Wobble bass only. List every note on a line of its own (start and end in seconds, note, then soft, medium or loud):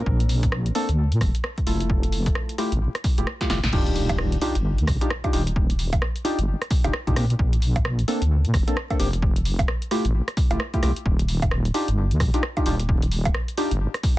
0.06 0.71 A#1 loud
0.89 1.13 D2 loud
1.12 1.22 A#2 medium
1.21 1.31 F1 medium
1.67 2.32 F1 medium
2.72 2.88 A1 loud
3.18 3.25 F1 loud
3.50 3.60 F1 loud
3.64 3.71 A1 loud
3.73 4.38 D#1 loud
4.55 4.80 G1 loud
4.78 4.89 D#2 medium
4.87 4.98 A#1 medium
5.33 5.98 D#1 medium
6.38 6.55 G1 loud
6.84 6.91 D#1 loud
7.07 7.14 A#1 medium
7.16 7.35 A#2 medium
7.39 8.04 A#1 loud
8.22 8.46 D2 loud
8.45 8.55 A#2 medium
8.54 8.64 F1 medium
9.00 9.65 F1 medium
10.05 10.21 A1 loud
10.51 10.58 F1 loud
10.83 10.93 C2 loud
11.06 11.71 D#1 loud
11.88 12.13 G1 loud
12.11 12.22 D#2 medium
12.20 12.30 A#1 medium
12.66 13.31 D#1 medium
13.71 13.87 G1 loud